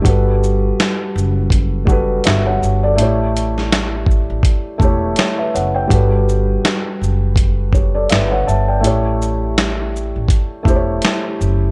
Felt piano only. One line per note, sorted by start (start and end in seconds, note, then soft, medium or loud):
0.02 0.94 G3 medium
0.02 0.96 F#4 medium
0.06 0.97 A4 medium
0.06 0.98 B4 medium
1.85 2.54 G3 medium
1.85 2.55 F#4 medium
1.89 2.25 A4 medium
1.89 2.24 B4 medium
2.25 2.45 B4 medium
2.25 2.45 E5 medium
2.47 2.81 C#5 medium
2.47 2.81 F#5 medium
2.83 3.18 A4 medium
2.83 3.17 D5 medium
2.95 3.88 A3 medium
2.95 3.89 E4 medium
3.00 3.90 G4 medium
3.00 3.91 C#5 medium
4.78 5.47 A3 medium
4.78 5.48 E4 medium
4.82 5.17 G4 medium
4.82 5.16 C#5 medium
5.18 5.38 G4 soft
5.18 5.38 C#5 medium
5.38 5.54 B4 medium
5.38 5.53 E5 medium
5.54 5.74 C#5 medium
5.54 5.74 F#5 medium
5.75 6.10 C#5 medium
5.75 6.10 G5 medium
5.87 6.80 G3 medium
5.87 6.81 F#4 medium
5.92 6.82 A4 medium
5.92 6.83 B4 medium
7.74 7.94 G4 soft
7.74 7.94 C#5 medium
7.95 8.10 A4 medium
7.95 8.09 D5 medium
8.10 8.30 B4 medium
8.10 8.30 E5 medium
8.31 8.46 C#5 medium
8.31 8.46 F#5 medium
8.46 8.67 E5 medium
8.46 8.66 A5 medium
8.68 9.03 D5 soft
8.68 9.03 G5 medium
8.80 9.73 A3 medium
8.80 9.74 E4 medium
8.84 9.75 G4 medium
8.84 9.76 C#5 medium
10.63 11.32 A3 medium
10.63 11.33 E4 medium
10.67 11.34 G4 medium
10.67 10.75 C5 medium
10.76 11.38 C#5 medium